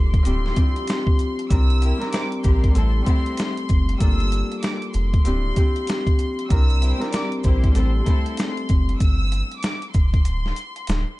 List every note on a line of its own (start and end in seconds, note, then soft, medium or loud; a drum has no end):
0.00 0.21 F1 loud
0.00 0.31 G3 medium
0.00 2.23 A#3 medium
0.00 0.27 D4 medium
0.00 0.36 F4 medium
0.00 1.21 A4 loud
0.00 1.46 C6 loud
0.14 kick loud
0.14 closed hi-hat soft
0.23 0.52 D1 loud
0.23 0.53 F3 loud
0.23 0.55 C4 medium
0.23 0.55 G4 loud
0.23 closed hi-hat medium
0.23 maracas medium
0.27 0.55 D4 medium
0.27 0.55 E4 medium
0.46 snare soft
0.54 1.56 F3 loud
0.54 1.51 C4 medium
0.54 kick loud
0.54 closed hi-hat medium
0.54 maracas medium
0.58 1.53 D4 medium
0.58 1.51 E4 medium
0.58 2.93 G4 loud
0.76 closed hi-hat soft
0.87 snare loud
0.87 closed hi-hat loud
0.87 maracas medium
1.07 kick loud
1.19 closed hi-hat medium
1.19 maracas soft
1.39 closed hi-hat soft
1.50 1.93 C2 loud
1.50 1.97 G3 medium
1.50 1.97 C4 medium
1.50 1.97 D4 medium
1.50 1.97 E4 medium
1.50 1.97 A#4 loud
1.50 2.10 E6 loud
1.50 kick loud
1.50 closed hi-hat medium
1.50 maracas medium
1.70 closed hi-hat soft
1.82 2.07 E4 medium
1.82 2.07 G4 medium
1.82 2.07 A#4 medium
1.82 closed hi-hat medium
1.82 maracas medium
1.98 2.71 G3 medium
1.98 2.77 C4 medium
1.98 4.02 D4 medium
1.98 2.80 A#4 loud
2.02 2.80 E4 medium
2.02 snare soft
2.02 closed hi-hat soft
2.13 2.29 E4 medium
2.13 2.29 G4 medium
2.13 2.29 C5 loud
2.13 2.42 D6 medium
2.13 snare loud
2.13 closed hi-hat loud
2.13 maracas medium
2.32 closed hi-hat soft
2.44 2.71 A#1 loud
2.44 2.69 E4 medium
2.44 2.69 G4 medium
2.44 2.69 A#4 medium
2.44 3.97 C6 loud
2.44 kick loud
2.44 closed hi-hat medium
2.44 maracas medium
2.64 kick loud
2.64 closed hi-hat soft
2.71 3.02 G3 loud
2.71 3.04 A3 medium
2.75 3.02 A1 loud
2.75 2.92 C4 medium
2.75 3.04 C4 medium
2.75 2.92 E4 medium
2.75 3.05 A4 loud
2.75 2.92 A4 loud
2.75 closed hi-hat medium
2.75 maracas medium
2.80 3.04 E4 medium
3.02 3.97 G3 medium
3.02 3.65 A3 medium
3.02 3.65 A4 medium
3.06 3.65 C4 medium
3.06 3.32 C4 medium
3.06 3.32 E4 medium
3.06 3.65 E4 medium
3.06 3.32 G4 medium
3.06 kick medium
3.06 closed hi-hat medium
3.06 maracas medium
3.26 closed hi-hat soft
3.37 snare loud
3.37 closed hi-hat loud
3.37 maracas medium
3.57 closed hi-hat soft
3.69 3.96 F#1 medium
3.69 kick medium
3.69 closed hi-hat medium
3.69 maracas soft
3.89 closed hi-hat soft
3.98 4.43 G1 loud
3.98 5.31 G3 loud
3.98 7.22 A#3 medium
3.98 6.21 A4 loud
3.98 4.59 E6 loud
3.98 kick loud
3.98 closed hi-hat medium
3.98 maracas medium
4.02 5.27 D4 medium
4.02 5.32 F4 medium
4.20 closed hi-hat soft
4.32 closed hi-hat medium
4.32 maracas medium
4.52 closed hi-hat soft
4.63 4.92 D6 medium
4.63 snare loud
4.63 closed hi-hat loud
4.63 maracas medium
4.82 closed hi-hat soft
4.94 5.21 F1 loud
4.94 6.47 C6 medium
4.94 closed hi-hat medium
4.94 maracas medium
5.14 kick loud
5.14 closed hi-hat soft
5.24 5.52 D1 loud
5.24 5.54 F3 loud
5.24 5.55 C4 medium
5.24 5.55 D4 medium
5.24 5.55 E4 medium
5.24 5.55 G4 loud
5.24 closed hi-hat loud
5.24 maracas medium
5.55 6.56 F3 loud
5.55 6.51 C4 medium
5.55 6.53 D4 medium
5.55 7.93 G4 loud
5.55 kick medium
5.55 closed hi-hat medium
5.55 maracas medium
5.60 6.51 E4 medium
5.76 closed hi-hat soft
5.87 snare loud
5.87 closed hi-hat medium
5.87 maracas medium
6.07 kick loud
6.07 closed hi-hat soft
6.19 closed hi-hat medium
6.19 maracas soft
6.39 closed hi-hat soft
6.49 6.93 C2 loud
6.49 6.98 G3 medium
6.49 6.97 C4 medium
6.49 6.97 E4 medium
6.49 6.97 A#4 loud
6.49 7.10 E6 loud
6.49 kick loud
6.49 closed hi-hat medium
6.49 maracas medium
6.54 6.97 D4 medium
6.70 closed hi-hat soft
6.81 7.07 E4 medium
6.81 7.07 G4 medium
6.81 7.07 C5 medium
6.81 closed hi-hat medium
6.81 maracas medium
6.98 7.71 G3 medium
6.98 7.76 C4 medium
6.98 9.81 D4 medium
6.98 7.79 E4 medium
6.98 7.80 A#4 loud
6.98 closed hi-hat soft
7.02 snare soft
7.12 7.28 G4 medium
7.12 7.28 A#4 medium
7.12 7.28 D5 loud
7.12 7.41 D6 medium
7.12 snare loud
7.12 closed hi-hat loud
7.12 maracas medium
7.32 closed hi-hat soft
7.44 7.71 A#1 medium
7.44 7.70 E4 medium
7.44 7.70 G4 medium
7.44 7.70 C5 medium
7.44 8.97 C6 medium
7.44 kick loud
7.44 closed hi-hat medium
7.44 maracas medium
7.64 kick loud
7.64 closed hi-hat soft
7.72 8.01 G3 loud
7.72 8.04 A3 medium
7.72 7.91 G4 medium
7.72 7.91 A4 medium
7.72 7.91 C5 medium
7.72 closed hi-hat medium
7.72 maracas medium
7.76 8.02 A1 loud
7.76 8.04 C4 medium
7.76 8.04 E4 medium
7.76 8.05 A4 loud
8.01 9.06 G3 medium
8.01 8.65 A3 medium
8.06 8.65 C4 medium
8.06 8.32 C4 medium
8.06 8.32 E4 medium
8.06 8.65 E4 medium
8.06 8.65 A4 loud
8.06 8.32 A4 medium
8.06 kick medium
8.06 closed hi-hat medium
8.06 maracas medium
8.26 closed hi-hat soft
8.37 snare loud
8.37 closed hi-hat loud
8.37 maracas medium
8.57 closed hi-hat soft
8.69 8.96 F#1 medium
8.69 kick medium
8.69 closed hi-hat medium
8.69 maracas soft
8.89 closed hi-hat soft
9.00 9.43 G1 loud
9.00 9.60 E6 loud
9.00 kick loud
9.00 closed hi-hat medium
9.00 maracas medium
9.32 closed hi-hat medium
9.32 maracas medium
9.52 closed hi-hat soft
9.62 9.91 D6 medium
9.62 snare loud
9.62 closed hi-hat loud
9.62 maracas medium
9.82 closed hi-hat soft
9.94 10.28 F1 loud
9.94 11.20 C6 loud
9.94 kick loud
9.94 closed hi-hat medium
9.94 maracas medium
10.14 kick loud
10.14 closed hi-hat soft
10.25 10.52 D1 loud
10.25 closed hi-hat medium
10.25 maracas medium
10.46 snare soft
10.56 closed hi-hat medium
10.56 maracas medium
10.76 closed hi-hat soft
10.87 11.05 D1 loud
10.87 snare loud
10.87 closed hi-hat medium
10.87 maracas medium